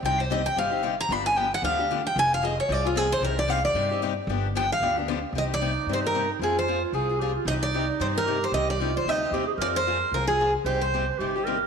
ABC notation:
X:1
M:4/4
L:1/8
Q:"Swing" 1/4=226
K:Cm
V:1 name="Steel-string acoustic guitar"
g c e g f3 b | =b a g ^f =f3 g | a f e _d =d F A c | B d f d3 z2 |
z2 g f2 z3 | e d3 c B2 z | A c2 z4 z | e d2 z c B2 c |
e d2 c e2 z2 | d c3 B A2 z | G c2 z4 z |]
V:2 name="Clarinet"
z8 | z8 | z8 | z8 |
z8 | E8 | F4 A2 G F | E6 G2- |
G2 F2 E2 G A | B6 z2 | c4 G2 B2 |]
V:3 name="Steel-string acoustic guitar"
[C,G,CEG] z [C,G,CEG] z [C,G,CEG] [CEG] [C,G,CEG] z | [D,F,=B,DG] z [D,F,B,DG] z [D,F,B,DG] [B,DG] [D,F,B,DG] z | [F,CFA] z [F,CFA] z [F,CFA] [CFA] [F,CFA] z | [C,G,CEG] z [C,G,CEG] z [C,G,CEG] [CEG] [C,G,CEG] z |
[D,F,=B,DG] z [D,F,B,DG] z [D,F,B,DG] [B,DG] [D,F,B,DG] z | [C,G,CEG] z [C,G,CEG] z [C,G,CEG] [CEG] [C,G,CEG] z | [F,CFA] z [F,CFA] z [F,CFA] [CFA] [F,CFA] z | [C,G,CEG] z [C,G,CEG] z [C,G,CEG] [CEG] [C,G,CEG] z |
[C,G,CEG] z [C,G,CEG] z [C,G,CEG] [CEG] [C,G,CEG] z | [F,CFA] z [F,CFA] z [F,CFA] [CFA] [F,CFA] z | [C,G,CEG] z [C,G,CEG] z [C,G,CEG] [CEG] [C,G,CEG] z |]
V:4 name="Upright bass" clef=bass
C,,4 G,,,4 | G,,,4 D,,4 | F,,,4 C,,4 | C,,4 G,,4 |
G,,,4 D,,4 | C,,4 G,,4 | F,,4 C,,4 | C,,4 G,,4 |
C,,4 D,,2 E,,2 | F,,4 C,,4 | C,,4 G,,,4 |]